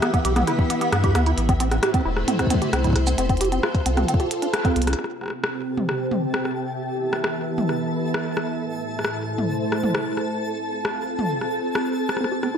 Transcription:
Already playing: string machine E3 B3 G4 E5 G5 B5
0.02 acid bass B3, cross-stick, closed hi-hat
0.14 acid bass B3, kick, closed hi-hat
0.25 sub bass B1, acid bass G4, closed hi-hat
0.36 acid bass B3, cross-stick, closed hi-hat, mid tom
0.47 acid bass E4, cross-stick, closed hi-hat
0.59 kick
0.70 acid bass B3, closed hi-hat
0.81 acid bass B3, closed hi-hat
0.92 sub bass G2, acid bass B3, cross-stick, closed hi-hat
1.04 acid bass G4, kick, closed hi-hat
1.15 sub bass D2, acid bass B3, cross-stick, closed hi-hat
1.26 acid bass E4, closed hi-hat
1.38 sub bass A1, string machine A2, closed hi-hat
1.45 string machine A3 C5
1.49 acid bass C4, string machine E4, kick, closed hi-hat
1.60 acid bass C4, closed hi-hat
1.71 acid bass C4, cross-stick, closed hi-hat
1.83 acid bass G4, cross-stick, closed hi-hat
1.94 acid bass C4, kick, closed hi-hat
2.05 sub bass E1, acid bass E4
2.17 cross-stick
2.28 acid bass C4, closed hi-hat, mid tom
2.39 acid bass C4, kick, cross-stick, closed hi-hat
2.47 acid bass C4, kick, closed hi-hat, mid tom
2.54 kick
2.62 acid bass G4, closed hi-hat
2.73 sub bass C2, acid bass C4, cross-stick, closed hi-hat
2.84 acid bass E4, kick, closed hi-hat
2.87 kick
2.90 kick
2.93 kick, cross-stick, closed hi-hat
3.07 acid bass C4, closed hi-hat, shaker
3.18 sub bass F1, acid bass C4, string machine F4, closed hi-hat
3.29 acid bass C4, kick, closed hi-hat
3.37 acid bass G4, string machine A4, closed hi-hat
3.41 closed hi-hat
3.45 closed hi-hat
3.52 acid bass C4, closed hi-hat
3.63 acid bass F4, cross-stick
3.75 kick, closed hi-hat
3.86 sub bass C2, acid bass C4, closed hi-hat
3.97 acid bass C4, cross-stick, closed hi-hat, mid tom
4.08 acid bass C4, closed hi-hat
4.14 kick
4.20 acid bass G4, closed hi-hat
4.31 closed hi-hat
4.42 acid bass D4, closed hi-hat
4.54 cross-stick, closed hi-hat
4.65 acid bass C4, kick, closed hi-hat
4.76 sub bass C2, acid bass B3, closed hi-hat
4.82 closed hi-hat
4.87 acid bass D4, cross-stick, closed hi-hat
4.93 cross-stick, closed hi-hat
4.99 string machine C3, synth texture A4 A5, cross-stick
5.04 string machine C4 G4, cross-stick
5.21 cross-stick
5.24 cross-stick
5.26 cross-stick
5.28 cross-stick
5.30 cross-stick
5.44 cross-stick
5.52 string machine E5 G5
5.77 mid tom
5.89 cross-stick
6.11 mid tom
6.34 cross-stick
6.45 cross-stick
6.79 string machine E3
6.85 string machine B3
7.13 cross-stick
7.24 cross-stick
7.42 string machine B5
7.58 mid tom
7.69 cross-stick
8.14 cross-stick
8.37 cross-stick
8.60 string machine A2
8.70 string machine A3 E4
8.99 cross-stick
9.05 cross-stick
9.13 string machine C5
9.38 mid tom
9.72 cross-stick
9.83 mid tom
9.95 cross-stick
10.17 cross-stick
10.40 string machine C4
10.50 string machine A4
10.55 string machine F4
10.85 cross-stick
11.19 mid tom
11.41 cross-stick
11.75 cross-stick
12.09 cross-stick
12.17 string machine C3, acid bass C4, cross-stick
12.24 cross-stick
12.32 acid bass G4
12.43 acid bass C4, cross-stick
12.54 acid bass E4, string machine G4

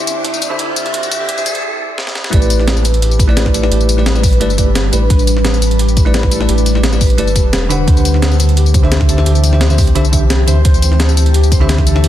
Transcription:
Already playing: tine electric piano D3 D4 G4 C5 E5, ambient pad C4 E4 G4 D5, harp D5 E5, riser
0.07 closed hi-hat, tambourine
0.25 harp E5, closed hi-hat
0.34 tambourine
0.42 closed hi-hat, tambourine
0.50 tine electric piano D3 D4 G4 C5 E5
0.59 harp E5, closed hi-hat
0.76 closed hi-hat, tambourine
0.85 tine electric piano D3 D4 G4 C5 E5, closed hi-hat
0.94 harp E5, closed hi-hat
1.03 closed hi-hat, tambourine
1.11 harp E5, closed hi-hat, tambourine
1.19 tine electric piano D3 D4 G4 C5 E5
1.29 harp E5, closed hi-hat
1.37 tine electric piano D3 D4 G4 C5 E5, tambourine
1.46 harp E5, closed hi-hat, tambourine
1.55 closed hi-hat
1.98 snare
2.07 snare
2.15 snare
2.24 snare
2.31 sub bass A1, ambient pad G3 D4 B4, tine electric piano A3 E4 G4 B4 D5, harp B4, kick, closed hi-hat
2.42 tambourine
2.50 closed hi-hat, tambourine
2.59 snare
2.67 harp A4, snare, closed hi-hat
2.77 tambourine
2.85 closed hi-hat, tambourine
2.94 closed hi-hat
3.02 harp G4, closed hi-hat
3.11 tambourine
3.19 harp B4, kick, closed hi-hat, tambourine
3.28 tine electric piano A3 E4 G4 B4 D5, snare
3.37 snare, closed hi-hat
3.46 kick, snare
3.54 harp A4, closed hi-hat, tambourine
3.62 tine electric piano A3 E4 G4 B4 D5, snare
3.71 sub bass A1, harp G4, closed hi-hat
3.81 tambourine
3.89 closed hi-hat, tambourine
3.97 tine electric piano A3 E4 G4 B4 D5, snare
4.06 harp B4, snare, closed hi-hat
4.14 tine electric piano A3 E4 G4 B4 D5, tambourine
4.23 kick, open hi-hat, tambourine
4.33 closed hi-hat
4.40 sub bass G1, tine electric piano A3 E4 G4 B4 D5, harp A4, closed hi-hat
4.50 tambourine
4.57 tine electric piano A3 E4 G4 B4 D5, harp G4, kick, closed hi-hat, tambourine
4.75 snare, closed hi-hat
4.92 sub bass A1, tine electric piano A3 E4 G4 B4 D5, harp B4, closed hi-hat, tambourine
5.10 sub bass A1, harp B4, kick, closed hi-hat
5.19 tambourine
5.27 closed hi-hat, tambourine
5.36 snare
5.45 harp A4, snare, closed hi-hat
5.54 tambourine
5.62 closed hi-hat, tambourine
5.71 closed hi-hat
5.79 harp G4, closed hi-hat
5.88 tambourine
5.97 harp B4, kick, closed hi-hat, tambourine
6.05 tine electric piano A3 E4 G4 B4 D5, snare
6.14 snare, closed hi-hat
6.23 kick, snare
6.31 harp A4, closed hi-hat, tambourine
6.40 tine electric piano A3 E4 G4 B4 D5, snare
6.49 sub bass A1, harp G4, closed hi-hat
6.58 tambourine
6.66 closed hi-hat, tambourine
6.75 tine electric piano A3 E4 G4 B4 D5, snare
6.84 harp B4, snare, closed hi-hat
6.92 tine electric piano A3 E4 G4 B4 D5, tambourine
7.01 kick, open hi-hat, tambourine
7.10 closed hi-hat
7.18 sub bass G1, tine electric piano A3 E4 G4 B4 D5, harp A4, closed hi-hat
7.27 tambourine
7.36 sub bass E1, harp G4, kick, closed hi-hat, tambourine
7.53 sub bass E1, snare, closed hi-hat
7.69 tine electric piano D3 D4 G4 C5 F#5, harp B4, snare, closed hi-hat, tambourine
7.87 sub bass D2, ambient pad E3 C4 G4, harp C5, kick, closed hi-hat
7.97 tambourine
8.05 closed hi-hat, tambourine
8.14 snare
8.22 harp A4, snare, closed hi-hat
8.31 tambourine
8.40 closed hi-hat, tambourine
8.49 closed hi-hat
8.57 harp G4, closed hi-hat
8.66 tambourine
8.74 harp C5, kick, closed hi-hat, tambourine
8.83 tine electric piano D3 D4 G4 C5 E5, snare
8.92 snare, closed hi-hat
9.01 kick, snare
9.09 harp A4, closed hi-hat, tambourine
9.17 tine electric piano D3 D4 G4 C5 E5, snare
9.26 sub bass D2, harp G4, closed hi-hat
9.35 tambourine
9.44 closed hi-hat, tambourine
9.52 tine electric piano D3 D4 G4 C5 E5, snare
9.61 harp C5, snare, closed hi-hat
9.69 tine electric piano D3 D4 G4 C5 E5, tambourine
9.78 kick, open hi-hat, tambourine
9.87 closed hi-hat
9.95 sub bass C2, tine electric piano D3 D4 G4 C5 E5, harp A4, closed hi-hat
10.05 tambourine
10.12 tine electric piano D3 D4 G4 C5 E5, harp G4, kick, closed hi-hat, tambourine
10.30 snare, closed hi-hat
10.47 sub bass D2, tine electric piano D3 D4 G4 C5 E5, harp C5, closed hi-hat, tambourine
10.65 sub bass D2, harp C5, kick, closed hi-hat
10.74 tambourine
10.82 closed hi-hat, tambourine
10.92 snare
11.00 harp A4, snare, closed hi-hat
11.09 tambourine
11.17 closed hi-hat, tambourine
11.26 closed hi-hat
11.34 harp G4, closed hi-hat
11.43 tambourine
11.52 harp C5, kick, closed hi-hat, tambourine
11.60 tine electric piano D3 D4 G4 C5 E5, snare
11.69 snare, closed hi-hat
11.78 kick, snare
11.87 harp A4, closed hi-hat, tambourine
11.95 tine electric piano D3 D4 G4 C5 E5, snare
12.04 sub bass D2, harp G4, closed hi-hat

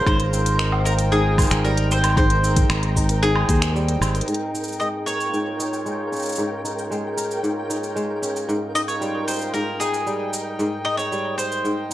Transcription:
Already playing: kora G#3 C#4 F4 A#4, harmonium F4 A#4, synth texture A#4 A#5
0.07 fingered electric bass G#1, kora G#2, mandolin C5, kick, cabasa, low woodblock
0.20 closed hi-hat
0.33 kora C4, cabasa
0.46 closed hi-hat, cabasa
0.56 harmonium D#4, finger snap
0.60 harmonium C5, cabasa
0.72 low woodblock
0.85 kora D#4, mandolin A#4, cabasa
0.94 harmonium G5
0.99 closed hi-hat, cabasa
1.12 kora G#2, mandolin G#4, cabasa
1.38 kora C5, kick, cabasa, low woodblock
1.42 cabasa
1.47 cabasa
1.49 fingered electric bass G#1, finger snap, closed hi-hat, cabasa
1.52 cabasa
1.65 kora G3, mandolin A#4, cabasa
1.77 closed hi-hat
1.91 kora C4, mandolin C5, cabasa
2.04 closed hi-hat, cabasa, low woodblock
2.17 kora G#2, mandolin C5, kick, cabasa
2.30 closed hi-hat
2.44 kora C4, cabasa
2.56 kick, closed hi-hat, cabasa
2.70 fingered electric bass G#1, finger snap, cabasa, low woodblock
2.83 closed hi-hat
2.96 kora D#4, kick, cabasa
3.09 closed hi-hat, cabasa
3.23 kora G#2, mandolin G#4, cabasa
3.36 low woodblock
3.49 fingered electric bass D#2, kora C5, kick, closed hi-hat, cabasa
3.62 finger snap, closed hi-hat, cabasa
3.75 kora G3, cabasa
3.88 closed hi-hat
4.01 fingered electric bass G#1, kora C4, cabasa, low woodblock
4.15 closed hi-hat, cabasa
4.21 closed hi-hat
4.28 kora G#2, synth texture A#4 G5, closed hi-hat, cabasa
4.34 closed hi-hat
4.54 kora D#4, cabasa
4.64 cabasa
4.68 cabasa
4.72 cabasa
4.80 kora G#3, mandolin D#5, cabasa
5.06 kora A#4, mandolin C#5, cabasa
5.11 harmonium C#5
5.21 cabasa
5.26 harmonium F4
5.33 kora G#2, cabasa
5.59 kora D#4, cabasa
5.73 cabasa
5.86 kora G#3, cabasa
6.12 kora C#4, cabasa
6.16 cabasa
6.19 cabasa
6.22 cabasa
6.26 cabasa
6.29 cabasa
6.32 cabasa
6.36 kora G#2, cabasa
6.64 kora D#4, cabasa
6.79 cabasa
6.91 kora G#3, cabasa
7.17 kora A#4, cabasa
7.31 cabasa
7.43 kora G#2, cabasa
7.70 kora D#4, cabasa
7.84 cabasa
7.96 kora G#3, cabasa
8.22 kora C#4, cabasa
8.36 cabasa
8.49 kora G#2, cabasa
8.75 kora D#4, mandolin D#5, cabasa
8.88 mandolin C#5, cabasa
9.00 kora G3, harmonium G5, cabasa
9.28 mandolin C5, harmonium D#5, cabasa
9.31 cabasa
9.36 cabasa
9.39 cabasa
9.41 cabasa
9.54 kora G#2, mandolin A#4, cabasa
9.80 kora D#4, mandolin G#4, cabasa
9.94 cabasa
10.06 kora G3, cabasa
10.33 cabasa
10.59 kora G#2, cabasa
10.85 kora D#4, mandolin D#5
10.97 mandolin C#5, cabasa
11.12 kora G3, cabasa
11.38 mandolin C5, kora C5, cabasa
11.52 cabasa
11.64 kora G#2, cabasa

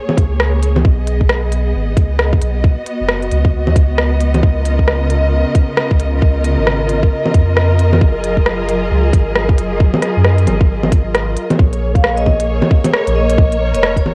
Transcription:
Already playing: string section A#3 G#4 C#5
0.09 low bongo
0.17 sub bass C#2, kick, closed hi-hat
0.40 cross-stick
0.63 closed hi-hat
0.76 low bongo
0.85 sub bass B1, string section B3 D#5, kick
1.07 closed hi-hat
1.21 kick
1.29 cross-stick
1.52 closed hi-hat
1.75 sub bass G#1
1.97 sub bass C#2, kick, closed hi-hat
2.19 cross-stick
2.33 kick
2.42 sub bass B1, closed hi-hat
2.64 string section F#4, kick
2.86 closed hi-hat
3.00 sub bass F#1
3.08 cross-stick
3.22 closed hi-hat
3.31 sub bass C#2, closed hi-hat
3.45 kick
3.67 sub bass D#2, low bongo
3.76 sub bass C#2, kick, closed hi-hat
3.98 cross-stick
4.20 closed hi-hat
4.34 closed hi-hat, low bongo
4.43 sub bass C#2, string section C#3 F4 A#4, kick
4.65 closed hi-hat
4.79 kick
4.88 cross-stick
5.10 closed hi-hat
5.55 kick, closed hi-hat
5.77 cross-stick
5.91 sub bass C#2, kick
6.00 closed hi-hat
6.22 sub bass C#2, kick
6.44 closed hi-hat
6.58 sub bass G#1
6.67 cross-stick
6.89 closed hi-hat
7.03 kick
7.26 low bongo
7.34 sub bass F2, kick, closed hi-hat
7.57 cross-stick
7.79 closed hi-hat
7.93 low bongo
8.01 sub bass F#1, string section F#3 G#4, kick
8.24 closed hi-hat
8.37 kick
8.46 cross-stick
8.69 closed hi-hat
8.91 sub bass C#2
9.13 sub bass G#1, kick, closed hi-hat
9.36 cross-stick
9.49 kick
9.58 sub bass F#1, closed hi-hat
9.80 kick
9.94 low bongo
10.02 cross-stick, closed hi-hat
10.17 sub bass F#2
10.25 cross-stick
10.38 closed hi-hat
10.47 sub bass G#1, closed hi-hat, low bongo
10.61 kick
10.83 low bongo
10.92 kick, closed hi-hat
11.15 cross-stick, closed hi-hat
11.37 closed hi-hat
11.50 closed hi-hat, low bongo
11.59 sub bass A#1, string section A#3 G#4 C#5, kick
11.73 closed hi-hat
11.95 vibraphone F5, kick, closed hi-hat
12.04 cross-stick
12.17 vibraphone D#5, closed hi-hat
12.26 vibraphone D#5, kick, low bongo
12.40 closed hi-hat
12.62 low bongo
12.71 kick
12.85 closed hi-hat, low bongo
12.94 cross-stick
13.07 sub bass A#1, closed hi-hat
13.16 vibraphone D#5
13.30 closed hi-hat
13.38 sub bass A#1, string section A#4, kick
13.52 closed hi-hat
13.74 sub bass F1, vibraphone D#5, closed hi-hat
13.83 cross-stick
13.96 vibraphone C#5, kick, closed hi-hat
14.06 low bongo

